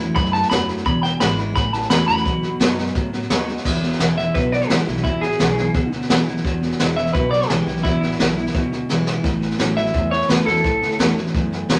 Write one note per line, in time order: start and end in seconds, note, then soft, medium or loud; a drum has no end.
0.00 0.13 A2 medium
0.00 0.14 A2 medium
0.00 0.14 F#3 medium
0.00 0.16 C#4 soft
0.00 0.15 E4 medium
0.15 0.44 F#2 loud
0.15 0.49 G#2 loud
0.15 0.31 A2 medium
0.15 0.32 E3 loud
0.15 0.33 B5 loud
0.15 kick loud
0.15 snare soft
0.25 snare soft
0.33 0.49 A2 medium
0.33 0.49 E3 medium
0.33 0.49 A5 loud
0.33 snare soft
0.42 snare soft
0.50 0.79 E2 medium
0.50 0.84 F#2 medium
0.50 0.67 A2 medium
0.50 0.67 F#3 loud
0.50 0.67 B5 medium
0.50 snare loud
0.50 hi-hat pedal medium
0.68 0.84 A2 medium
0.68 0.84 F#3 medium
0.68 snare soft
0.77 snare soft
0.85 1.13 E1 loud
0.85 1.01 E2 medium
0.85 1.52 E2 medium
0.85 1.01 B2 loud
0.85 1.03 B5 loud
0.85 kick loud
0.85 snare soft
1.03 1.19 E2 medium
1.03 1.19 B2 medium
1.03 1.20 G5 medium
1.03 snare soft
1.20 1.55 G#1 loud
1.20 1.36 E2 medium
1.20 1.54 E3 loud
1.20 1.54 G#3 loud
1.20 1.55 B3 loud
1.20 1.55 E4 loud
1.20 1.37 B5 loud
1.20 snare loud
1.20 hi-hat pedal loud
1.38 1.54 E2 medium
1.38 1.54 C#3 medium
1.38 snare soft
1.55 1.83 A1 loud
1.55 1.71 A2 medium
1.55 2.22 A2 loud
1.55 1.71 E3 medium
1.55 1.73 B5 loud
1.55 kick loud
1.55 snare soft
1.73 1.89 A2 medium
1.73 1.89 E3 medium
1.73 1.90 A5 medium
1.73 snare soft
1.82 snare soft
1.90 2.04 E2 medium
1.90 2.06 A2 medium
1.90 2.23 E3 medium
1.90 2.06 F#3 loud
1.90 2.24 A3 loud
1.90 2.24 C#4 loud
1.90 2.24 E4 loud
1.90 2.07 B5 medium
1.90 snare loud
1.90 hi-hat pedal medium
2.08 2.22 E2 medium
2.08 2.24 A2 medium
2.08 2.24 F#3 medium
2.08 3.06 B5 loud
2.08 snare soft
2.17 snare soft
2.25 2.39 B1 medium
2.25 2.41 B2 loud
2.25 2.92 B2 medium
2.25 2.41 F#3 loud
2.25 kick loud
2.25 snare soft
2.43 2.57 E2 medium
2.43 2.58 B2 medium
2.43 2.59 F#3 medium
2.43 snare soft
2.60 2.88 F#2 loud
2.60 2.76 B2 medium
2.60 2.77 F#3 loud
2.60 2.76 G#3 loud
2.60 2.77 B3 medium
2.60 2.77 D#4 loud
2.60 2.76 F#4 loud
2.60 snare loud
2.60 hi-hat pedal loud
2.77 2.93 B2 medium
2.77 2.93 G#3 medium
2.77 2.95 D#4 medium
2.77 2.94 F#4 medium
2.77 snare soft
2.87 snare soft
2.95 3.62 F#2 loud
2.95 3.23 A2 loud
2.95 3.10 B2 medium
2.95 3.11 F#3 loud
2.95 kick loud
2.95 snare soft
3.13 3.28 B2 medium
3.13 3.28 F#3 medium
3.13 snare soft
3.22 snare soft
3.30 3.58 D#2 medium
3.30 3.46 B2 medium
3.30 3.47 F#3 medium
3.30 3.46 G#3 loud
3.30 3.47 B3 loud
3.30 3.48 D#4 loud
3.30 3.46 F#4 loud
3.30 snare loud
3.30 hi-hat pedal medium
3.48 3.63 B2 medium
3.48 3.63 G#3 medium
3.48 3.65 D#4 medium
3.48 3.64 F#4 medium
3.48 snare soft
3.57 snare soft
3.65 3.93 E1 medium
3.65 4.31 E2 medium
3.65 3.81 E2 medium
3.65 3.81 B2 loud
3.65 kick loud
3.65 snare soft
3.65 crash loud
3.82 3.98 E2 medium
3.82 3.98 B2 medium
3.82 snare soft
3.92 snare soft
3.99 4.28 E1 medium
3.99 4.16 E2 medium
3.99 4.16 C#3 loud
3.99 4.16 E3 loud
3.99 4.16 G#3 loud
3.99 4.17 B3 loud
3.99 4.15 E4 medium
3.99 snare loud
3.99 hi-hat pedal loud
4.16 4.33 E2 medium
4.16 4.33 C#3 medium
4.16 4.35 B3 soft
4.16 4.34 E4 medium
4.16 4.34 E5 medium
4.16 snare soft
4.34 4.63 B1 loud
4.34 4.51 E2 medium
4.34 5.01 B2 loud
4.34 4.51 B2 loud
4.34 4.52 B4 medium
4.34 kick loud
4.34 snare soft
4.52 4.68 E2 medium
4.52 4.68 B2 medium
4.52 4.69 D5 medium
4.52 snare soft
4.61 snare soft
4.69 4.84 B1 medium
4.69 4.86 E2 loud
4.69 4.86 C#3 loud
4.69 4.86 E3 medium
4.69 4.86 G#3 medium
4.69 4.87 B3 medium
4.69 4.85 E4 loud
4.69 5.03 G4 medium
4.69 snare loud
4.69 hi-hat pedal medium
4.86 5.01 B1 loud
4.86 5.03 E2 medium
4.86 5.03 C#3 medium
4.86 5.05 B3 medium
4.86 5.03 E4 medium
4.86 snare soft
4.96 snare soft
5.04 5.19 E1 medium
5.04 5.71 E2 medium
5.04 5.20 E2 loud
5.04 5.20 B2 loud
5.04 5.21 E4 medium
5.04 kick loud
5.04 snare soft
5.21 5.36 A1 medium
5.21 5.38 E2 medium
5.21 5.38 B2 medium
5.21 5.90 G#4 medium
5.21 snare soft
5.31 snare soft
5.39 5.67 B1 medium
5.39 5.55 E2 medium
5.39 5.56 C#3 loud
5.39 5.56 E3 loud
5.39 5.56 G#3 loud
5.39 5.57 B3 loud
5.39 5.55 E4 loud
5.39 snare loud
5.39 hi-hat pedal medium
5.56 5.73 E2 medium
5.56 5.73 C#3 medium
5.56 5.74 B3 soft
5.56 5.73 E4 medium
5.56 snare soft
5.74 6.02 D2 loud
5.74 5.90 E2 medium
5.74 6.41 B2 medium
5.74 5.90 B2 medium
5.74 kick loud
5.74 snare soft
5.92 6.08 E2 medium
5.92 6.08 B2 medium
5.92 snare soft
6.01 snare soft
6.08 6.38 B1 medium
6.08 6.25 E2 medium
6.08 6.25 C#3 loud
6.08 6.26 E3 medium
6.08 6.26 G#3 medium
6.08 6.27 B3 loud
6.08 6.26 E4 loud
6.08 snare loud
6.08 hi-hat pedal medium
6.27 6.43 E2 medium
6.27 6.43 C#3 medium
6.27 6.45 B3 soft
6.27 6.44 E4 medium
6.27 snare soft
6.36 snare soft
6.44 6.73 E1 medium
6.44 6.60 E2 medium
6.44 7.11 E2 medium
6.44 6.60 B2 loud
6.44 kick loud
6.44 snare soft
6.62 6.78 E2 medium
6.62 6.78 B2 medium
6.62 snare soft
6.71 snare soft
6.79 7.07 E1 loud
6.79 6.95 E2 medium
6.79 6.96 C#3 loud
6.79 6.96 E3 loud
6.79 6.96 G#3 loud
6.79 6.97 B3 loud
6.79 6.95 E4 loud
6.79 snare loud
6.79 hi-hat pedal medium
6.96 7.13 E2 medium
6.96 7.13 C#3 medium
6.96 7.15 B3 soft
6.96 7.14 E4 medium
6.96 7.13 E5 loud
6.96 snare soft
7.06 snare soft
7.13 7.43 B1 loud
7.13 7.30 E2 medium
7.13 7.81 B2 loud
7.13 7.30 B2 loud
7.13 7.30 B4 medium
7.13 kick loud
7.13 snare soft
7.31 7.48 E2 medium
7.31 7.48 B2 medium
7.31 7.49 D5 medium
7.31 snare soft
7.41 snare soft
7.49 7.63 B1 medium
7.49 7.65 E2 loud
7.49 7.65 C#3 medium
7.49 7.66 E3 medium
7.49 7.67 G#3 loud
7.49 7.67 B3 loud
7.49 7.66 E4 loud
7.49 7.83 G4 medium
7.49 snare loud
7.49 hi-hat pedal medium
7.66 7.81 B1 loud
7.66 7.82 E2 medium
7.66 7.83 C#3 medium
7.66 7.85 B3 medium
7.66 7.84 E4 medium
7.66 snare soft
7.76 snare soft
7.83 7.99 E1 medium
7.83 8.00 E2 loud
7.83 8.51 E2 medium
7.83 8.00 B2 loud
7.83 8.00 E4 loud
7.83 kick loud
7.83 snare soft
8.01 8.16 A1 medium
8.01 8.17 E2 medium
8.01 8.18 B2 medium
8.01 8.69 E4 medium
8.01 snare soft
8.11 snare soft
8.19 8.47 B1 loud
8.19 8.35 E2 medium
8.19 8.35 C#3 medium
8.19 8.36 E3 loud
8.19 8.36 G#3 loud
8.19 8.37 B3 loud
8.19 8.36 E4 loud
8.19 snare loud
8.19 hi-hat pedal medium
8.36 8.52 E2 medium
8.36 8.53 C#3 medium
8.36 8.55 B3 medium
8.36 8.54 E4 medium
8.36 snare soft
8.46 snare soft
8.54 8.83 D2 loud
8.54 8.70 E2 medium
8.54 8.70 B2 medium
8.54 9.21 B2 medium
8.54 kick loud
8.54 snare soft
8.71 8.87 E2 medium
8.71 8.88 B2 medium
8.71 snare soft
8.88 9.17 B1 medium
8.88 9.05 E2 medium
8.88 9.05 C#3 loud
8.88 9.23 E3 medium
8.88 9.23 G#3 medium
8.88 9.23 B3 medium
8.88 9.24 E4 loud
8.88 snare medium
8.88 hi-hat pedal medium
9.06 9.22 E2 medium
9.06 9.22 C#3 medium
9.06 snare loud
9.23 9.52 A1 medium
9.23 9.40 A2 loud
9.23 9.91 A2 medium
9.23 9.40 E3 loud
9.23 kick loud
9.23 snare soft
9.41 9.57 A2 medium
9.41 9.57 E3 medium
9.41 snare soft
9.50 snare soft
9.58 9.87 A1 medium
9.58 9.75 A2 medium
9.58 9.76 E3 loud
9.58 9.75 F#3 medium
9.58 9.76 A3 medium
9.58 9.77 C#4 medium
9.58 9.76 E4 loud
9.58 snare loud
9.58 hi-hat pedal medium
9.76 9.92 A2 medium
9.76 9.92 F#3 medium
9.76 9.95 C#4 soft
9.76 9.94 E4 medium
9.76 10.11 E5 medium
9.76 snare soft
9.86 snare soft
9.93 10.61 E2 medium
9.93 10.22 E2 loud
9.93 10.09 A2 medium
9.93 10.10 E3 loud
9.93 kick loud
9.93 snare soft
10.11 10.27 A2 medium
10.11 10.28 E3 medium
10.11 10.29 C#5 loud
10.11 snare soft
10.21 snare soft
10.28 10.43 E2 loud
10.28 10.45 A2 medium
10.28 10.46 E3 medium
10.28 10.45 F#3 loud
10.28 10.46 A3 medium
10.28 10.46 C#4 medium
10.28 10.45 E4 loud
10.28 10.46 B4 medium
10.28 snare loud
10.28 hi-hat pedal medium
10.46 10.61 E2 medium
10.46 10.63 A2 medium
10.46 10.63 F#3 medium
10.46 10.64 C#4 medium
10.46 10.63 E4 medium
10.46 11.14 A4 loud
10.46 snare soft
10.56 snare soft
10.64 10.78 A1 medium
10.64 10.80 A2 loud
10.64 11.31 A2 medium
10.64 10.80 E3 loud
10.64 kick loud
10.64 snare soft
10.82 10.96 D2 medium
10.82 10.98 A2 medium
10.82 10.98 E3 medium
10.82 snare soft
10.91 snare soft
10.99 11.27 E2 loud
10.99 11.15 A2 medium
10.99 11.16 E3 loud
10.99 11.15 F#3 medium
10.99 11.16 A3 loud
10.99 11.17 C#4 loud
10.99 11.14 E4 loud
10.99 snare loud
10.99 hi-hat pedal medium
11.16 11.33 A2 medium
11.16 11.33 F#3 medium
11.16 11.34 C#4 soft
11.16 11.33 E4 medium
11.16 snare soft
11.26 snare soft
11.34 11.79 E2 medium
11.34 11.63 F#2 medium
11.34 11.50 A2 medium
11.34 11.51 E3 loud
11.34 kick loud
11.34 snare soft
11.52 11.68 A2 medium
11.52 11.68 E3 medium
11.52 snare soft
11.69 11.79 E2 medium
11.69 11.79 A2 medium
11.69 11.79 E3 medium
11.69 11.79 F#3 loud
11.69 11.79 A3 medium
11.69 11.79 C#4 loud
11.69 11.79 E4 loud
11.69 snare loud
11.69 hi-hat pedal medium